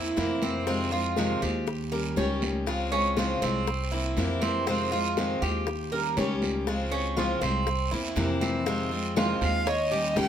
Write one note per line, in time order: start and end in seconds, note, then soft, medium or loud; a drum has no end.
0.00 0.15 E2 medium
0.00 0.16 A#3 soft
0.00 0.16 C4 soft
0.00 0.16 E4 soft
0.00 0.41 E4 medium
0.16 1.36 F2 medium
0.16 0.65 C3 medium
0.16 0.66 E3 medium
0.16 0.66 A#3 medium
0.16 0.67 C4 medium
0.16 0.67 E4 medium
0.16 high bongo soft
0.16 low bongo medium
0.16 high conga medium
0.16 short guiro medium
0.42 0.66 C4 medium
0.42 high bongo soft
0.42 high conga medium
0.42 short guiro medium
0.67 0.91 C3 medium
0.67 0.91 D#3 medium
0.67 0.91 G#3 medium
0.67 0.92 C4 medium
0.67 0.91 C4 medium
0.67 0.90 F4 medium
0.67 high bongo medium
0.67 high conga soft
0.67 long guiro medium
0.92 1.17 G#3 soft
0.92 1.16 C4 soft
0.92 1.16 F4 soft
0.92 1.41 F4 medium
0.92 high bongo soft
0.92 high conga soft
1.17 1.41 C3 medium
1.17 1.41 D#3 medium
1.17 1.42 G#3 medium
1.17 1.42 C4 medium
1.17 1.41 F4 medium
1.17 high bongo medium
1.17 high conga medium
1.17 short guiro medium
1.42 2.13 D#2 medium
1.42 1.67 G#3 soft
1.42 1.67 C4 soft
1.42 1.66 F4 soft
1.42 1.91 G4 medium
1.42 high bongo soft
1.42 high conga soft
1.42 short guiro medium
1.67 muted steel-string acoustic guitar stroke medium
1.67 high bongo medium
1.67 high conga soft
1.67 long guiro medium
1.92 2.16 G3 soft
1.92 2.17 C#4 soft
1.92 2.16 G4 medium
1.92 2.16 A#4 medium
1.92 high conga soft
2.16 3.36 C#2 medium
2.16 2.66 D#3 medium
2.16 2.66 G3 medium
2.16 2.67 C#4 medium
2.16 2.67 G4 medium
2.16 2.42 C#5 medium
2.16 high bongo soft
2.16 low bongo medium
2.16 high conga medium
2.16 short guiro medium
2.42 high bongo soft
2.42 high conga medium
2.42 short guiro medium
2.66 2.91 C#3 medium
2.66 2.91 F3 medium
2.66 2.91 G#3 medium
2.66 2.92 C4 medium
2.66 2.91 F4 medium
2.66 high bongo medium
2.66 high conga soft
2.66 long guiro medium
2.92 3.17 G#3 soft
2.92 3.17 C4 soft
2.92 3.16 C#4 medium
2.92 3.16 F4 soft
2.92 high bongo soft
2.92 high conga soft
3.17 3.41 C#3 medium
3.17 3.42 F3 medium
3.17 3.42 G#3 medium
3.17 3.41 C4 medium
3.17 3.41 F4 medium
3.17 3.40 F4 medium
3.17 high bongo medium
3.17 high conga medium
3.17 short guiro medium
3.42 4.13 C2 medium
3.42 3.67 G#3 soft
3.42 3.91 C4 medium
3.42 3.66 C4 soft
3.42 3.66 F4 soft
3.42 high bongo soft
3.42 high conga soft
3.42 short guiro medium
3.67 muted steel-string acoustic guitar stroke medium
3.67 high bongo medium
3.67 high conga soft
3.67 long guiro medium
3.92 4.17 A#3 soft
3.92 4.17 C4 soft
3.92 4.41 E4 medium
3.92 4.16 E4 medium
3.92 high conga soft
4.17 5.36 F2 medium
4.17 4.66 C3 medium
4.17 4.66 E3 medium
4.17 4.67 A#3 medium
4.17 4.67 C4 medium
4.17 4.67 E4 medium
4.17 high bongo soft
4.17 low bongo medium
4.17 high conga medium
4.17 short guiro medium
4.42 4.66 C4 medium
4.42 high bongo soft
4.42 high conga medium
4.42 short guiro medium
4.67 4.91 C3 medium
4.67 4.92 D#3 medium
4.67 4.92 G#3 medium
4.67 4.91 C4 medium
4.67 4.92 C4 medium
4.67 4.91 F4 medium
4.67 high bongo medium
4.67 high conga soft
4.67 long guiro medium
4.92 5.17 G#3 soft
4.92 5.17 C4 soft
4.92 5.41 F4 medium
4.92 5.16 F4 soft
4.92 high bongo soft
4.92 high conga soft
5.17 5.41 C3 medium
5.17 5.42 D#3 medium
5.17 5.42 G#3 medium
5.17 5.42 C4 medium
5.17 5.41 F4 medium
5.17 high bongo medium
5.17 high conga medium
5.17 short guiro medium
5.42 6.13 D#2 medium
5.42 5.67 G#3 soft
5.42 5.67 C4 soft
5.42 5.66 F4 soft
5.42 5.91 G4 medium
5.42 high bongo soft
5.42 high conga soft
5.42 short guiro medium
5.67 muted steel-string acoustic guitar stroke medium
5.67 high bongo medium
5.67 high conga soft
5.67 long guiro medium
5.92 6.16 G3 soft
5.92 6.17 C#4 soft
5.92 6.16 G4 medium
5.92 6.16 A#4 medium
5.92 high conga soft
6.17 7.35 C#2 medium
6.17 6.66 D#3 medium
6.17 6.66 G3 medium
6.17 6.67 C#4 medium
6.17 6.67 G4 medium
6.17 6.42 C#5 medium
6.17 high bongo soft
6.17 low bongo medium
6.17 high conga medium
6.17 short guiro medium
6.42 high bongo soft
6.42 high conga medium
6.42 short guiro medium
6.67 6.91 C#3 medium
6.67 6.91 F3 medium
6.67 6.92 G#3 medium
6.67 6.92 C4 medium
6.67 6.91 F4 medium
6.67 high bongo medium
6.67 high conga soft
6.67 long guiro medium
6.92 7.17 G#3 soft
6.92 7.17 C4 soft
6.92 7.16 C#4 medium
6.92 7.16 F4 soft
6.92 high bongo soft
6.92 high conga soft
7.17 7.41 C#3 medium
7.17 7.41 F3 medium
7.17 7.42 G#3 medium
7.17 7.42 C4 medium
7.17 7.41 F4 medium
7.17 high bongo medium
7.17 high conga medium
7.17 short guiro medium
7.41 7.88 C2 medium
7.41 7.67 G#3 soft
7.41 7.90 C4 medium
7.41 7.66 C4 soft
7.41 7.66 F4 soft
7.41 high bongo soft
7.41 high conga soft
7.41 short guiro medium
7.67 muted steel-string acoustic guitar stroke medium
7.67 high bongo medium
7.67 high conga soft
7.67 long guiro medium
7.91 8.15 E2 medium
7.91 8.16 A#3 soft
7.91 8.16 C4 soft
7.91 8.40 E4 medium
7.91 8.16 E4 soft
7.91 high conga soft
8.16 9.35 F2 medium
8.16 8.65 C3 medium
8.16 8.66 E3 medium
8.16 8.66 A#3 medium
8.16 8.66 C4 medium
8.16 8.66 E4 medium
8.16 high bongo soft
8.16 low bongo medium
8.16 high conga medium
8.16 short guiro medium
8.41 8.65 C4 medium
8.41 high bongo soft
8.41 high conga medium
8.41 short guiro medium
8.66 8.90 C3 medium
8.66 8.91 D#3 medium
8.66 8.91 G#3 medium
8.66 9.15 C4 medium
8.66 8.91 C4 medium
8.66 8.90 F4 medium
8.66 high bongo medium
8.66 high conga soft
8.66 long guiro medium
8.91 9.16 G#3 soft
8.91 9.16 C4 soft
8.91 9.16 F4 soft
8.91 high conga soft
9.16 9.40 C3 medium
9.16 9.41 D#3 medium
9.16 9.41 G#3 medium
9.16 9.41 C4 medium
9.16 9.65 F4 medium
9.16 9.40 F4 medium
9.16 high bongo medium
9.16 high conga loud
9.16 short guiro medium
9.41 10.12 D#2 medium
9.41 9.66 G#3 soft
9.41 9.66 C4 soft
9.41 9.65 F4 medium
9.41 9.70 F5 medium
9.41 high conga soft
9.41 short guiro medium
9.67 9.91 C#5 medium
9.67 10.19 D#5 medium
9.67 muted steel-string acoustic guitar stroke medium
9.67 high bongo medium
9.67 high conga soft
9.67 long guiro medium
9.91 10.16 G3 soft
9.91 10.16 C#4 soft
9.91 10.15 G4 medium
9.91 10.28 G4 medium
9.91 high conga soft
10.16 10.28 C#2 medium
10.16 10.28 D#3 medium
10.16 10.28 G3 medium
10.16 10.28 C#4 medium
10.16 10.28 G4 medium
10.16 10.28 G5 loud
10.16 high bongo medium
10.16 low bongo medium
10.16 high conga medium
10.16 short guiro medium